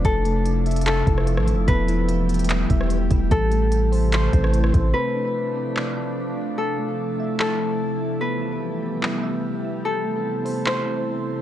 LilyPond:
<<
  \new Staff \with { instrumentName = "Harp" } { \time 4/4 \key a \minor \tempo 4 = 147 a'4 r4 a'2 | b'2 r2 | a'4 r4 c''4 r4 | b'2 r2 |
a'4 r4 a'2 | b'2 r2 | a'4 r4 c''4 r4 | }
  \new Staff \with { instrumentName = "Synth keys" } { \time 4/4 \key a \minor r8 a4 e''4 e'4. | b8 e'4 b8 e'8 e''4 e'8 | r8 a4 c''4 c'4. | c'8 d'4 c'8 d'8 d''4 d'8 |
r8 a4 e''4 e'4. | b8 e'4 b8 e'8 e''4 e'8 | r8 a4 c''4 c'4. | }
  \new Staff \with { instrumentName = "Ambient pad" } { \time 4/4 \key a \minor << { e'1 | g'1 | e'1 | <a d'>1 |
<a e'>1 | <b g'>1 | <c' e'>1 | } \\ { <c f a>1 | <e g>1 | <c a>1 | <c f>1~ |
<c f>1 | <e g>1 | <c a>1 | } >> }
  \new Staff \with { instrumentName = "808-style bass" } { \clef bass \time 4/4 \key a \minor f,,2~ f,,8 f,,8. a,,16. f,,16. | e,,2~ e,,8 e,,4 e,,8 | a,,2~ a,,8 a,,4 a,,8 | r1 |
r1 | r1 | r1 | }
  \new DrumStaff \with { instrumentName = "Drums" } \drummode { \time 4/4 <hh bd>8 hh8 hh8 hh32 hh32 hh32 hh32 <hc hh>8 <hh bd>16 ss16 hh16 ss16 hh8 | <hh bd>8 hh8 hh8 hh32 hh32 hh32 hh32 <hc hh>8 <hh bd>16 ss16 hh8 <hh bd>8 | <hh bd>8 hh8 hh8 hho8 <hc hh>8 <hh bd>16 ss16 hh16 ss16 <hh bd>8 | r4 r4 hc4 r4 |
r4 r4 hc4 r4 | r4 r4 hc4 r4 | r4 r8 hho8 hc4 r4 | }
>>